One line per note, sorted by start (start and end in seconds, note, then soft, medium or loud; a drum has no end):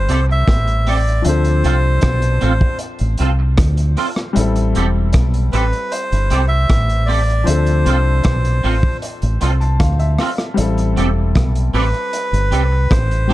0.00 1.20 G3 medium
0.00 1.20 C4 medium
0.00 1.22 E4 medium
0.00 1.23 A4 medium
0.00 0.26 C5 medium
0.09 0.45 C2 medium
0.09 0.18 C4 medium
0.09 0.19 G4 medium
0.09 0.19 A4 medium
0.09 closed hi-hat medium
0.29 0.89 E5 loud
0.29 muted clean electric guitar stroke medium
0.48 1.21 A1 medium
0.48 kick loud
0.48 cross-stick loud
0.48 closed hi-hat medium
0.67 closed hi-hat soft
0.87 0.96 C4 medium
0.87 0.96 G4 medium
0.87 0.97 A4 medium
0.87 1.24 D5 medium
0.87 open hi-hat medium
1.07 closed hi-hat soft
1.22 1.62 D2 loud
1.22 4.30 F3 medium
1.22 4.32 C4 medium
1.22 closed hi-hat loud
1.26 4.33 D4 medium
1.26 4.34 A4 medium
1.26 2.78 C5 medium
1.44 closed hi-hat medium
1.64 2.01 C2 medium
1.64 1.74 C4 medium
1.64 1.74 F4 medium
1.64 1.74 A4 medium
1.64 closed hi-hat medium
2.01 2.39 B1 medium
2.01 kick loud
2.01 cross-stick loud
2.01 closed hi-hat medium
2.22 closed hi-hat medium
2.41 2.61 A1 medium
2.41 2.51 C4 medium
2.41 2.51 F4 medium
2.41 2.52 A4 medium
2.41 closed hi-hat medium
2.61 kick medium
2.79 closed hi-hat medium
2.99 3.19 A1 medium
2.99 closed hi-hat soft
3.18 3.56 C2 medium
3.18 3.29 C4 medium
3.18 3.29 F4 medium
3.18 3.30 A4 medium
3.18 closed hi-hat medium
3.39 muted clean electric guitar stroke medium
3.58 3.95 D2 medium
3.58 kick loud
3.58 cross-stick loud
3.58 closed hi-hat medium
3.77 closed hi-hat soft
3.97 4.07 C4 medium
3.97 4.07 F4 medium
3.97 4.07 A4 medium
3.97 open hi-hat medium
4.16 cross-stick medium
4.16 closed hi-hat soft
4.33 4.73 A1 loud
4.33 7.41 G3 medium
4.33 7.42 C4 medium
4.33 closed hi-hat loud
4.37 7.43 E4 medium
4.37 7.44 A4 medium
4.56 closed hi-hat medium
4.75 5.12 E1 medium
4.75 4.85 C4 medium
4.75 4.85 G4 medium
4.75 4.86 A4 medium
4.75 closed hi-hat medium
5.13 5.51 B1 medium
5.13 kick loud
5.13 cross-stick loud
5.13 closed hi-hat medium
5.34 closed hi-hat medium
5.52 5.72 A1 medium
5.52 5.62 C4 medium
5.52 5.63 G4 medium
5.52 5.63 A4 medium
5.52 5.92 B4 medium
5.52 closed hi-hat medium
5.73 closed hi-hat soft
5.91 6.46 C5 medium
5.91 closed hi-hat medium
6.12 6.30 G1 medium
6.12 closed hi-hat soft
6.30 6.67 C2 medium
6.30 6.40 C4 medium
6.30 6.41 G4 medium
6.30 6.41 A4 medium
6.30 closed hi-hat medium
6.48 7.09 E5 loud
6.48 muted clean electric guitar stroke medium
6.70 7.43 A1 medium
6.70 kick loud
6.70 cross-stick loud
6.70 closed hi-hat medium
6.89 closed hi-hat soft
7.06 7.17 C4 medium
7.06 7.18 G4 medium
7.06 7.18 A4 medium
7.06 7.47 D5 medium
7.06 open hi-hat medium
7.29 closed hi-hat soft
7.44 7.84 D2 loud
7.44 10.52 F3 medium
7.44 10.53 C4 medium
7.44 10.54 D4 medium
7.44 8.97 C5 medium
7.44 closed hi-hat loud
7.50 10.55 A4 medium
7.66 closed hi-hat medium
7.86 8.22 C2 medium
7.86 7.95 C4 medium
7.86 7.96 F4 medium
7.86 7.96 A4 medium
7.86 closed hi-hat medium
8.24 8.61 B1 medium
8.24 kick loud
8.24 cross-stick loud
8.24 closed hi-hat medium
8.45 closed hi-hat medium
8.63 8.82 A1 medium
8.63 8.73 C4 medium
8.63 8.73 F4 medium
8.63 8.74 A4 medium
8.63 open hi-hat soft
8.83 kick medium
9.02 closed hi-hat medium
9.22 9.40 A1 loud
9.22 closed hi-hat soft
9.41 9.78 C2 medium
9.41 9.50 C4 medium
9.41 9.51 F4 medium
9.41 9.51 A4 medium
9.41 9.60 C6 medium
9.41 closed hi-hat medium
9.60 9.78 A5 medium
9.60 muted clean electric guitar stroke medium
9.60 closed hi-hat soft
9.80 10.16 D2 medium
9.80 9.98 F5 medium
9.80 kick loud
9.80 cross-stick medium
9.80 closed hi-hat medium
9.99 10.17 E5 medium
9.99 closed hi-hat soft
10.18 10.29 C4 medium
10.18 10.29 F4 medium
10.18 10.29 A4 medium
10.18 10.54 F5 medium
10.18 cross-stick medium
10.18 open hi-hat medium
10.38 cross-stick medium
10.38 closed hi-hat soft
10.54 13.23 G3 medium
10.54 13.24 C4 medium
10.54 13.25 E4 medium
10.54 closed hi-hat loud
10.59 10.94 A1 loud
10.59 13.26 A4 medium
10.78 closed hi-hat medium
10.97 11.33 E1 medium
10.97 11.06 C4 medium
10.97 11.06 G4 medium
10.97 11.07 A4 loud
10.97 closed hi-hat medium
11.35 11.72 B1 loud
11.35 kick loud
11.35 cross-stick loud
11.35 closed hi-hat medium
11.55 closed hi-hat medium
11.74 11.92 A1 medium
11.74 11.83 C4 medium
11.74 11.84 G4 medium
11.74 11.84 A4 loud
11.74 12.94 B4 medium
11.74 open hi-hat soft
11.94 closed hi-hat soft
12.13 closed hi-hat medium
12.33 12.50 G1 medium
12.33 closed hi-hat soft
12.51 12.88 C2 medium
12.51 12.61 C4 medium
12.51 12.61 G4 medium
12.51 12.62 A4 medium
12.51 closed hi-hat medium
12.71 muted clean electric guitar stroke medium
12.90 13.34 A1 medium
12.90 13.34 C5 medium
12.90 kick loud
12.90 cross-stick loud
12.90 closed hi-hat medium
13.11 closed hi-hat soft
13.27 13.34 G3 soft
13.27 13.34 C4 soft
13.27 13.34 C4 medium
13.27 13.34 E4 soft
13.27 13.34 G4 medium
13.27 13.34 A4 medium
13.27 open hi-hat medium